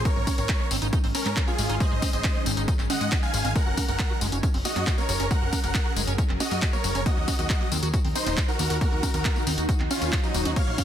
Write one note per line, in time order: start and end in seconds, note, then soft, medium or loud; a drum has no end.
0.00 7.02 C#4 medium
0.05 3.52 D#3 medium
0.05 0.11 G#3 loud
0.05 3.52 G#3 medium
0.05 0.34 A#4 medium
0.05 0.34 C#5 loud
0.05 kick loud
0.05 closed hi-hat medium
0.05 tambourine soft
0.16 0.25 G#1 medium
0.16 0.18 G#3 medium
0.27 0.29 C4 medium
0.27 kick medium
0.27 open hi-hat loud
0.27 tambourine medium
0.27 high conga medium
0.38 0.47 G#1 medium
0.38 0.40 C4 medium
0.38 0.67 A#4 medium
0.38 0.67 C#5 loud
0.38 closed hi-hat medium
0.38 tambourine soft
0.49 0.51 C4 medium
0.49 kick loud
0.49 clap loud
0.49 closed hi-hat medium
0.49 tambourine soft
0.60 0.62 G#3 loud
0.71 0.80 G#1 loud
0.71 0.77 C4 medium
0.71 open hi-hat loud
0.71 tambourine medium
0.82 0.91 G#1 medium
0.82 0.88 D#4 medium
0.82 closed hi-hat medium
0.82 tambourine soft
0.93 0.99 D#4 loud
0.93 kick loud
0.93 closed hi-hat medium
0.93 tambourine soft
1.04 1.13 G#1 medium
1.04 1.08 C4 loud
1.04 open hi-hat medium
1.15 1.17 C4 medium
1.15 1.44 C#4 medium
1.15 1.44 A#4 loud
1.15 open hi-hat loud
1.15 tambourine medium
1.26 1.35 G#2 medium
1.26 1.28 C4 medium
1.26 clap soft
1.26 closed hi-hat medium
1.26 tambourine soft
1.37 1.39 C4 medium
1.37 kick loud
1.37 clap loud
1.37 closed hi-hat medium
1.37 tambourine soft
1.47 1.51 C#4 medium
1.47 1.76 F4 medium
1.47 1.76 G#4 loud
1.47 tambourine soft
1.58 1.68 G#1 medium
1.58 1.62 G#3 medium
1.58 open hi-hat loud
1.58 tambourine medium
1.69 1.78 G#1 medium
1.69 1.75 D#4 medium
1.69 closed hi-hat medium
1.69 tambourine soft
1.80 1.86 G#3 loud
1.80 2.09 C5 medium
1.80 2.09 D#5 loud
1.80 kick loud
1.80 closed hi-hat medium
1.80 tambourine soft
1.91 2.00 G#1 medium
1.91 1.94 G#3 medium
2.02 2.05 C4 medium
2.02 kick medium
2.02 open hi-hat loud
2.02 tambourine medium
2.02 high conga medium
2.13 2.22 G#1 medium
2.13 2.16 C4 medium
2.13 2.42 C5 medium
2.13 2.42 D#5 loud
2.13 closed hi-hat medium
2.13 tambourine soft
2.24 2.27 C4 medium
2.24 kick loud
2.24 clap loud
2.24 closed hi-hat medium
2.24 tambourine soft
2.35 2.37 G#3 loud
2.46 2.55 G#1 medium
2.46 2.52 C4 medium
2.46 open hi-hat loud
2.46 tambourine medium
2.57 2.66 G#1 medium
2.57 2.63 D#4 medium
2.57 closed hi-hat medium
2.57 tambourine soft
2.68 2.74 D#4 loud
2.68 kick loud
2.68 closed hi-hat medium
2.68 tambourine soft
2.79 2.88 G#1 medium
2.79 2.83 C4 loud
2.79 clap soft
2.79 tambourine soft
2.90 2.94 C4 medium
2.90 3.19 D#5 medium
2.90 3.19 F#5 loud
2.90 open hi-hat loud
2.90 tambourine medium
2.90 high conga medium
3.01 3.10 G#2 medium
3.01 3.05 G#3 loud
3.01 closed hi-hat medium
3.01 tambourine soft
3.12 3.16 D#4 medium
3.12 kick loud
3.12 clap loud
3.12 closed hi-hat medium
3.12 tambourine soft
3.23 3.27 G#3 medium
3.23 3.52 F5 medium
3.23 3.52 G#5 loud
3.23 tambourine soft
3.34 3.43 G#1 loud
3.34 3.38 G#3 medium
3.34 open hi-hat loud
3.34 tambourine medium
3.45 3.54 G#1 medium
3.45 3.49 C4 loud
3.45 closed hi-hat medium
3.45 tambourine soft
3.56 7.02 F#3 medium
3.56 3.62 G#3 loud
3.56 7.02 G#4 medium
3.56 8.77 A#4 medium
3.56 3.85 A#4 medium
3.56 3.84 F#5 loud
3.56 kick loud
3.56 closed hi-hat medium
3.56 tambourine soft
3.66 3.75 F#1 medium
3.66 3.69 F#4 medium
3.77 3.80 A#3 medium
3.77 kick medium
3.77 open hi-hat loud
3.77 tambourine medium
3.77 high conga medium
3.88 3.97 F#1 medium
3.88 3.91 A#3 medium
3.88 4.17 A#4 medium
3.88 4.17 F#5 loud
3.88 closed hi-hat medium
3.88 tambourine soft
3.99 4.02 G#3 medium
3.99 kick loud
3.99 clap loud
3.99 closed hi-hat medium
3.99 tambourine soft
4.10 4.13 F#4 loud
4.21 4.30 F#1 loud
4.21 4.27 G#3 medium
4.21 open hi-hat loud
4.21 tambourine medium
4.32 4.41 F#1 medium
4.32 4.38 C#4 medium
4.32 closed hi-hat medium
4.32 tambourine soft
4.43 4.49 C#4 loud
4.43 kick loud
4.43 closed hi-hat medium
4.43 tambourine soft
4.54 4.63 F#1 medium
4.54 4.58 C4 loud
4.54 open hi-hat medium
4.65 4.67 A#3 medium
4.65 4.94 F#4 medium
4.65 4.94 D#5 loud
4.65 open hi-hat loud
4.65 tambourine medium
4.76 4.85 F#2 medium
4.76 4.78 A#3 medium
4.76 clap soft
4.76 closed hi-hat medium
4.76 tambourine soft
4.87 4.89 G#3 medium
4.87 kick loud
4.87 clap loud
4.87 closed hi-hat medium
4.87 tambourine soft
4.98 5.02 A#3 medium
4.98 5.27 A#4 medium
4.98 5.27 C#5 loud
4.98 tambourine soft
5.09 5.18 F#1 loud
5.09 5.13 F#4 medium
5.09 open hi-hat loud
5.09 tambourine medium
5.20 5.29 F#1 medium
5.20 5.26 C#4 medium
5.20 closed hi-hat medium
5.20 tambourine soft
5.31 5.37 G#3 loud
5.31 5.60 A#4 medium
5.31 5.60 F#5 loud
5.31 kick loud
5.31 closed hi-hat medium
5.31 tambourine soft
5.42 5.51 F#1 medium
5.42 5.44 F#4 medium
5.53 5.55 A#3 medium
5.53 kick medium
5.53 open hi-hat loud
5.53 tambourine medium
5.53 high conga medium
5.64 5.73 F#1 medium
5.64 5.66 A#3 medium
5.64 5.93 A#4 medium
5.64 5.93 F#5 loud
5.64 closed hi-hat medium
5.64 tambourine soft
5.75 5.77 G#3 medium
5.75 kick loud
5.75 clap loud
5.75 closed hi-hat medium
5.75 tambourine soft
5.86 5.88 F#4 loud
5.96 6.05 F#1 loud
5.96 6.02 G#3 medium
5.96 open hi-hat loud
5.96 tambourine medium
6.07 6.16 F#1 medium
6.07 6.13 C#4 medium
6.07 closed hi-hat medium
6.07 tambourine soft
6.18 6.24 C#4 loud
6.18 kick loud
6.18 closed hi-hat medium
6.18 tambourine soft
6.29 6.38 F#1 medium
6.29 6.33 C4 loud
6.29 clap soft
6.40 6.43 A#3 medium
6.40 6.69 F#4 medium
6.40 6.69 D#5 loud
6.40 open hi-hat loud
6.40 tambourine medium
6.40 high conga medium
6.51 6.60 F#2 medium
6.51 6.54 A#3 medium
6.51 closed hi-hat medium
6.51 tambourine soft
6.62 6.65 G#3 medium
6.62 kick loud
6.62 clap loud
6.62 closed hi-hat medium
6.62 tambourine soft
6.73 6.77 A#3 medium
6.73 7.02 A#4 medium
6.73 7.02 C#5 loud
6.73 tambourine soft
6.84 6.93 F#1 loud
6.84 6.88 F#4 medium
6.84 open hi-hat loud
6.84 tambourine medium
6.95 7.04 F#1 medium
6.95 7.01 C#4 medium
6.95 closed hi-hat medium
6.95 tambourine soft
7.06 10.53 D#3 medium
7.06 7.12 A#3 loud
7.06 10.53 D#4 medium
7.06 7.35 F#4 medium
7.06 10.53 F#4 medium
7.06 7.35 D#5 loud
7.06 kick loud
7.06 closed hi-hat medium
7.06 tambourine soft
7.17 7.26 D#2 medium
7.17 7.19 A#3 medium
7.28 7.30 C4 medium
7.28 kick medium
7.28 open hi-hat loud
7.28 tambourine medium
7.28 high conga medium
7.39 7.48 D#2 medium
7.39 7.41 C4 medium
7.39 7.68 F#4 medium
7.39 7.68 D#5 loud
7.39 closed hi-hat medium
7.39 tambourine soft
7.50 7.52 C4 medium
7.50 kick loud
7.50 clap loud
7.50 closed hi-hat medium
7.50 tambourine soft
7.61 7.63 A#3 loud
7.72 7.81 D#2 loud
7.72 7.78 C4 medium
7.72 open hi-hat loud
7.72 tambourine medium
7.83 7.92 D#2 medium
7.83 7.89 F#4 medium
7.83 closed hi-hat medium
7.83 tambourine soft
7.94 8.00 F#4 loud
7.94 kick loud
7.94 closed hi-hat medium
7.94 tambourine soft
8.05 8.13 D#2 medium
8.05 8.08 C4 loud
8.05 open hi-hat medium
8.15 8.18 C4 medium
8.15 8.44 D#4 medium
8.15 8.44 C5 loud
8.15 open hi-hat loud
8.15 tambourine medium
8.26 8.35 D#1 medium
8.26 8.29 C4 medium
8.26 clap soft
8.26 closed hi-hat medium
8.26 tambourine soft
8.37 8.40 C4 medium
8.37 kick loud
8.37 clap loud
8.37 closed hi-hat medium
8.37 tambourine soft
8.48 8.52 D#4 medium
8.48 8.77 F#4 medium
8.48 8.77 A#4 loud
8.48 tambourine soft
8.59 8.68 D#2 loud
8.59 8.63 A#3 medium
8.59 open hi-hat loud
8.59 tambourine medium
8.70 8.79 D#2 medium
8.70 8.76 F#4 medium
8.70 closed hi-hat medium
8.70 tambourine soft
8.81 8.87 A#3 loud
8.81 9.10 F#4 medium
8.81 9.10 A#4 loud
8.81 10.55 C5 medium
8.81 kick loud
8.81 closed hi-hat medium
8.81 tambourine soft
8.92 9.01 D#2 medium
8.92 8.94 A#3 medium
9.03 9.05 C4 medium
9.03 kick medium
9.03 open hi-hat loud
9.03 tambourine medium
9.03 high conga medium
9.14 9.23 D#2 medium
9.14 9.16 C4 medium
9.14 9.43 F#4 medium
9.14 9.43 A#4 loud
9.14 closed hi-hat medium
9.14 tambourine soft
9.25 9.27 C4 medium
9.25 kick loud
9.25 clap loud
9.25 closed hi-hat medium
9.25 tambourine soft
9.36 9.38 A#3 loud
9.36 tambourine soft
9.47 9.56 D#2 loud
9.47 9.53 C4 medium
9.47 open hi-hat loud
9.47 tambourine medium
9.58 9.67 D#2 medium
9.58 9.64 F#4 medium
9.58 closed hi-hat medium
9.58 tambourine soft
9.69 9.75 F#4 loud
9.69 kick loud
9.69 closed hi-hat medium
9.69 tambourine soft
9.80 9.89 D#2 medium
9.80 9.84 C4 loud
9.80 clap soft
9.91 9.93 C4 medium
9.91 10.20 C#4 medium
9.91 10.20 F4 medium
9.91 open hi-hat loud
9.91 tambourine medium
9.91 high conga medium
10.02 10.11 D#2 medium
10.02 10.04 C4 medium
10.02 closed hi-hat medium
10.02 tambourine soft
10.13 10.15 C4 medium
10.13 kick loud
10.13 clap loud
10.13 open hi-hat medium
10.13 tambourine soft
10.23 10.52 F#3 medium
10.23 10.27 D#4 medium
10.23 10.52 D#4 loud
10.23 tambourine soft
10.34 10.43 D#1 loud
10.34 10.38 A#3 medium
10.34 open hi-hat loud
10.34 tambourine medium
10.45 10.54 D#2 medium
10.45 10.51 F#4 medium
10.45 closed hi-hat medium
10.45 tambourine soft
10.45 high conga medium
10.56 10.62 A#3 loud
10.56 10.84 C#5 medium
10.56 10.84 F5 loud
10.56 kick loud
10.56 closed hi-hat medium
10.56 crash medium
10.56 tambourine soft
10.67 10.76 A#1 medium
10.67 10.70 A#3 medium
10.78 10.81 C4 medium
10.78 kick medium
10.78 open hi-hat loud
10.78 tambourine medium
10.78 high conga medium